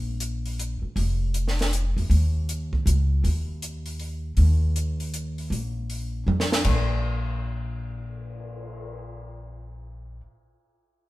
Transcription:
Already playing: A#1
0.20 closed hi-hat
0.46 open hi-hat
0.60 closed hi-hat
0.82 muted upright bass stroke
0.96 F1, open hi-hat
1.34 closed hi-hat
1.48 snare
1.59 snare, open hi-hat
1.73 closed hi-hat
1.97 E2, open hi-hat
2.10 D#2, open hi-hat
2.49 closed hi-hat
2.73 kick
2.86 C#2, closed hi-hat
3.24 D#2, open hi-hat
3.62 closed hi-hat
3.86 open hi-hat
4.00 open hi-hat
4.37 D#2, open hi-hat
4.76 closed hi-hat
5.00 open hi-hat
5.14 closed hi-hat
5.38 open hi-hat
5.50 A#1, open hi-hat
5.90 open hi-hat
6.27 F2, mid tom
6.40 snare
6.52 snare
6.65 A#1, kick, crash
6.89 cymbal swell

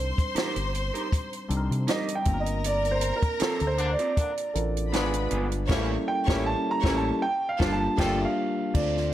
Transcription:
Already playing: C2 G3 C4 D4 D#4 A#4 C5 C6
0.18 kick, closed hi-hat
0.35 D#4 G4 A#4, muted fingered electric bass stroke, snare, closed hi-hat
0.56 G1, closed hi-hat
0.75 closed hi-hat
0.94 D#4 G4 A#4, closed hi-hat
1.12 kick, closed hi-hat
1.33 closed hi-hat
1.49 C2 G3 C4 D4 D#4 A4, closed hi-hat
1.57 A#4
1.71 C3, closed hi-hat
1.87 D#4 G4 A#4 D#5, snare, closed hi-hat
2.08 closed hi-hat
2.15 G5
2.25 G1 A#3 C4 D4 F4 A4 A#4 A#5, kick, closed hi-hat
2.34 A#4
2.40 D#5
2.46 closed hi-hat
2.64 D5, closed hi-hat
2.85 closed hi-hat
2.91 C5
3.01 closed hi-hat
3.16 A#4
3.23 muted fingered electric bass stroke, kick, closed hi-hat
3.40 C4 F4 A4 A#4, muted fingered electric bass stroke, snare, closed hi-hat
3.60 D2, closed hi-hat
3.67 C5
3.78 D3 A#3 D4, closed hi-hat
3.92 D5
3.99 C4 F4 A#4, closed hi-hat
4.16 D3 A#3 D4, kick, closed hi-hat
4.37 closed hi-hat
4.54 A1 C4 D4 F4 A4 A#4, closed hi-hat
4.77 closed hi-hat
4.91 G#1 D3 G#3 B3 D4 F4 G#4 B4 B5, snare, closed hi-hat
5.14 closed hi-hat
5.31 G1 B3 F4 G#4, closed hi-hat
5.52 closed hi-hat
5.69 A1 E3 G3 A#3 C#4 E4 G4 A4 C#5 C#6, kick, snare, crash
6.08 G5
6.27 A1 E3 G3 A#3 C#4 E4 G4 A4 C#5 C#6, kick, snare
6.46 A5
6.71 A#5
6.82 A1 E3 G3 A#3 C#4 E4 G4 A4 C#5 C#6, kick, snare
6.97 A5
7.22 G5
7.49 F5
7.59 G1 F3 G3 A#3 D4 F4 A4 A5, kick, snare
7.73 A5
7.97 G1 G3 A3 A#3 D4 F4 A4 G5 A5, kick, snare, crash
8.20 E5
8.25 F5
8.74 D2 A3 C4 D4 F4 A4 C5 D5 F5, kick, crash
8.97 snare

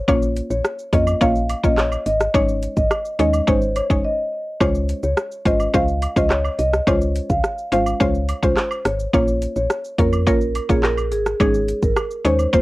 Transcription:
0.08 A#1 A#3 C#4 F4 C#5, kick, high woodblock, shaker
0.22 shaker
0.36 closed hi-hat, cabasa, shaker
0.50 A#1 C#5, shaker
0.65 cross-stick, shaker
0.79 shaker
0.93 F2 A#3 C#4 F4 C#5 D#5, kick, closed hi-hat, cabasa, shaker
1.07 high woodblock, shaker
1.21 A#1 A#3 C#4 F4 C#5 F5, kick, shaker
1.35 shaker
1.49 closed hi-hat, cabasa, high woodblock, shaker
1.63 A#1 A#3 C#4 F4 C#5 D#5, kick, shaker
1.78 C#5, cross-stick, clap, shaker
1.92 high woodblock, shaker
2.06 G#1 D#5, closed hi-hat, cabasa, shaker
2.20 cross-stick, shaker
2.34 G#1 G#3 C#4 D#4 C#5, kick, high woodblock, shaker
2.48 shaker
2.62 closed hi-hat, cabasa, shaker
2.77 G#1 D#5, kick, shaker
2.91 cross-stick, high woodblock, shaker
3.05 shaker
3.19 D#2 G#3 C#4 D#4 C#5 D#5, closed hi-hat, cabasa, shaker
3.33 high woodblock, shaker
3.47 G#1 G#3 C#4 D#4 C5 C#5, kick, shaker
3.62 shaker
3.76 C#5, closed hi-hat, cabasa, high woodblock, shaker
3.90 F#1 G#3 C#4 D#4 C#5, kick, shaker
4.04 D#5
4.60 C#2 G#3 C#4 F4 C5 C#5, kick, high woodblock, shaker
4.75 shaker
4.89 closed hi-hat, cabasa, shaker
5.03 C#2 C#5, shaker
5.17 cross-stick, shaker
5.32 shaker
5.45 G#1 G#3 C#4 F4 C5 D#5, kick, closed hi-hat, cabasa, shaker
5.60 high woodblock, shaker
5.74 C#2 G#3 C#4 F4 C5 F5, kick, shaker
5.88 shaker
6.02 closed hi-hat, cabasa, high woodblock, shaker
6.16 C#2 G#3 C#4 F4 C5 D#5, kick, shaker
6.30 C#5, cross-stick, clap, shaker
6.45 high woodblock, shaker
6.59 C2 D#5, closed hi-hat, cabasa, shaker
6.73 cross-stick, shaker
6.87 C#2 G#3 C#4 F4 C5 C#5, kick, high woodblock, shaker
7.01 shaker
7.15 closed hi-hat, cabasa, shaker
7.30 C#2 F5, kick, shaker
7.44 cross-stick, shaker
7.58 shaker
7.72 G#1 G#3 C#4 F4 C5 F5, closed hi-hat, cabasa, shaker
7.86 high woodblock, shaker
8.00 C#2 G#3 C#4 F4 C5 C#5, kick, shaker
8.15 shaker
8.29 closed hi-hat, cabasa, high woodblock, shaker
8.43 C2 G#3 C#4 F4 C5, kick, shaker
8.57 cross-stick, clap, shaker
8.71 high woodblock, shaker
8.85 G#1 C#5, cross-stick, closed hi-hat, cabasa, shaker
9.00 shaker
9.13 A#1 A#3 C#4 F4 C#5, kick, high woodblock, shaker
9.28 shaker
9.42 closed hi-hat, cabasa, shaker
9.56 A#1 C#5, shaker
9.70 cross-stick, shaker
9.84 shaker
9.98 F2 A#3 C#4 F4 A#4 C#5, kick, closed hi-hat, cabasa, shaker
10.13 high woodblock, shaker
10.27 A#1 A#3 C#4 F4 A#4 C#5, kick, shaker
10.41 shaker
10.55 closed hi-hat, cabasa, high woodblock, shaker
10.69 A#1 A#3 C#4 F4 G#4 C#5, kick, shaker
10.83 A#4, cross-stick, clap, shaker
10.97 high woodblock, shaker
11.12 G#1 G#4, closed hi-hat, cabasa, shaker
11.26 cross-stick, shaker
11.40 G#1 G#3 C#4 D#4 G#4 C#5, kick, high woodblock, shaker
11.54 shaker
11.68 closed hi-hat, cabasa, shaker
11.82 G#1 A#4, kick, shaker
11.96 cross-stick, high woodblock, shaker
12.11 shaker
12.25 D#2 G#3 C#4 D#4 C5 C#5, closed hi-hat, cabasa, shaker
12.39 high woodblock, shaker
12.53 F1 A#3 C4 F4 C5, kick, shaker

